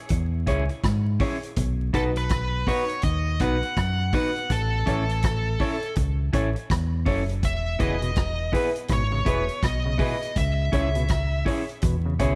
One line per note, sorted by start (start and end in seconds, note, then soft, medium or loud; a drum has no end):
0.09 0.45 E2 medium
0.09 kick loud
0.09 closed hi-hat medium
0.47 0.68 C#2 medium
0.47 0.63 C#4 medium
0.47 0.63 E4 medium
0.47 0.63 G#4 medium
0.47 0.64 G#4 medium
0.47 0.63 C#5 medium
0.47 0.64 C#5 loud
0.47 kick medium
0.47 closed hi-hat medium
0.69 muted clean electric guitar stroke soft
0.69 closed hi-hat soft
0.84 1.18 G#2 medium
0.84 kick medium
0.84 cross-stick loud
0.84 closed hi-hat medium
1.20 1.36 C#4 medium
1.20 1.37 E4 medium
1.20 1.36 E4 medium
1.20 1.36 G#4 medium
1.20 1.37 G#4 medium
1.20 1.37 C#5 medium
1.20 kick medium
1.20 open hi-hat medium
1.43 1.49 G#4 soft
1.43 1.49 C#5 soft
1.43 closed hi-hat soft
1.56 1.91 B1 loud
1.56 kick loud
1.56 closed hi-hat medium
1.93 2.63 B1 medium
1.93 2.09 B3 medium
1.93 2.09 D#4 medium
1.93 2.10 D#4 medium
1.93 2.10 F#4 medium
1.93 2.01 A4 medium
1.93 2.10 B4 medium
1.93 2.11 B4 medium
1.93 kick medium
1.93 closed hi-hat medium
2.16 2.69 B4 medium
2.16 closed hi-hat medium
2.29 kick loud
2.29 cross-stick loud
2.29 closed hi-hat medium
2.67 2.83 B3 medium
2.67 2.83 D#4 medium
2.67 2.83 F#4 medium
2.67 2.84 F#4 medium
2.67 2.84 B4 loud
2.67 3.04 C#5 medium
2.67 kick medium
2.67 open hi-hat medium
2.89 closed hi-hat soft
3.02 3.38 D#2 loud
3.02 3.42 D#5 medium
3.02 kick loud
3.02 closed hi-hat medium
3.39 3.61 B1 medium
3.39 3.56 B3 medium
3.39 3.57 D#4 medium
3.39 3.56 D#4 medium
3.39 3.57 F#4 medium
3.39 3.57 B4 medium
3.39 4.13 F#5 loud
3.39 kick medium
3.39 closed hi-hat medium
3.63 muted clean electric guitar stroke soft
3.63 closed hi-hat soft
3.77 4.11 F#2 medium
3.77 kick medium
3.77 cross-stick loud
3.77 closed hi-hat medium
4.13 4.29 B3 medium
4.13 4.30 D#4 medium
4.13 4.29 D#4 medium
4.13 4.30 F#4 medium
4.13 4.30 B4 medium
4.13 4.52 F#5 medium
4.13 kick medium
4.13 open hi-hat medium
4.36 4.42 F#4 soft
4.36 4.42 B4 soft
4.36 closed hi-hat soft
4.50 4.84 A1 loud
4.50 5.93 A4 medium
4.50 kick loud
4.50 closed hi-hat medium
4.86 5.56 A1 medium
4.86 5.02 C#4 medium
4.86 5.02 E4 medium
4.86 5.03 E4 medium
4.86 5.03 A4 medium
4.86 5.03 C#5 medium
4.86 5.04 C#5 medium
4.86 kick medium
4.86 closed hi-hat medium
5.09 closed hi-hat medium
5.22 kick loud
5.22 cross-stick loud
5.22 closed hi-hat medium
5.60 5.76 C#4 medium
5.60 5.76 E4 medium
5.60 5.76 A4 medium
5.60 5.76 C#5 medium
5.60 5.77 C#5 loud
5.60 kick medium
5.60 open hi-hat medium
5.82 closed hi-hat medium
5.95 6.31 C#2 medium
5.95 kick loud
5.95 closed hi-hat medium
6.33 6.54 A1 medium
6.33 6.49 C#4 medium
6.33 6.49 E4 medium
6.33 6.49 A4 medium
6.33 6.50 A4 medium
6.33 6.50 C#5 medium
6.33 kick medium
6.33 closed hi-hat medium
6.55 muted clean electric guitar stroke soft
6.55 closed hi-hat soft
6.70 7.04 E2 medium
6.70 kick medium
6.70 cross-stick loud
6.70 closed hi-hat medium
7.05 7.44 F#1 medium
7.05 7.22 C#4 medium
7.05 7.22 E4 medium
7.05 7.23 E4 medium
7.05 7.22 A4 medium
7.05 7.23 A4 medium
7.05 7.22 C#5 medium
7.05 7.23 C#5 medium
7.05 kick medium
7.05 open hi-hat medium
7.29 7.35 A4 soft
7.29 7.35 C#5 soft
7.29 closed hi-hat soft
7.43 7.77 E1 loud
7.43 7.78 E5 loud
7.43 kick medium
7.43 closed hi-hat medium
7.79 8.49 E1 medium
7.79 7.93 C#3 medium
7.79 7.95 B3 medium
7.79 7.95 E4 medium
7.79 7.96 E4 medium
7.79 7.96 G#4 medium
7.79 7.96 B4 medium
7.79 7.96 B4 loud
7.79 8.49 D#5 medium
7.79 kick medium
7.79 closed hi-hat medium
8.02 8.11 B2 medium
8.02 closed hi-hat medium
8.16 kick loud
8.16 cross-stick loud
8.16 closed hi-hat medium
8.52 8.68 B3 medium
8.52 8.69 E4 medium
8.52 8.69 G#4 medium
8.52 8.69 B4 medium
8.52 8.70 B4 loud
8.52 kick medium
8.52 open hi-hat medium
8.76 closed hi-hat soft
8.88 9.24 G#1 loud
8.88 9.03 B2 medium
8.88 kick loud
8.88 cross-stick medium
8.88 closed hi-hat medium
8.93 9.61 C#5 medium
9.12 9.20 C#3 medium
9.25 9.47 E1 medium
9.25 9.40 B2 medium
9.25 9.41 B3 medium
9.25 9.42 E4 medium
9.25 9.43 E4 medium
9.25 9.42 G#4 medium
9.25 9.43 G#4 medium
9.25 9.42 B4 medium
9.25 9.43 B4 medium
9.25 kick medium
9.25 closed hi-hat medium
9.47 muted clean electric guitar stroke soft
9.47 closed hi-hat soft
9.63 9.97 B1 medium
9.63 10.38 D#5 medium
9.63 kick medium
9.63 cross-stick medium
9.63 closed hi-hat medium
9.85 9.94 C#3 medium
9.98 10.13 B2 medium
9.98 10.15 B3 medium
9.98 10.15 E4 medium
9.98 10.15 G#4 medium
9.98 10.16 G#4 medium
9.98 10.15 B4 medium
9.98 10.16 B4 medium
9.98 kick medium
9.98 open hi-hat medium
10.22 10.28 G#4 soft
10.22 10.28 B4 soft
10.22 closed hi-hat soft
10.36 10.70 C#2 loud
10.36 11.43 E5 medium
10.36 kick loud
10.36 closed hi-hat medium
10.72 11.42 C#2 medium
10.72 10.87 C#3 medium
10.72 10.88 C#4 medium
10.72 10.88 E4 medium
10.72 10.89 E4 medium
10.72 10.89 G#4 medium
10.72 10.89 C#5 medium
10.72 10.90 C#5 medium
10.72 kick medium
10.72 closed hi-hat medium
10.95 11.04 B2 medium
10.95 closed hi-hat medium
11.08 kick loud
11.08 cross-stick loud
11.08 closed hi-hat medium
11.45 11.62 C#4 medium
11.45 11.62 E4 medium
11.45 11.62 G#4 medium
11.45 11.63 G#4 medium
11.45 11.62 C#5 medium
11.45 11.63 C#5 loud
11.45 kick medium
11.45 open hi-hat medium
11.69 closed hi-hat soft
11.82 12.17 E2 loud
11.82 11.96 B2 medium
11.82 kick loud
11.82 closed hi-hat medium
12.06 12.14 C#3 medium
12.19 12.35 C#2 medium
12.19 12.33 B2 medium
12.19 12.35 C#4 medium
12.19 12.35 E4 medium
12.19 12.35 G#4 medium
12.19 12.35 C#5 medium
12.19 kick medium
12.19 closed hi-hat medium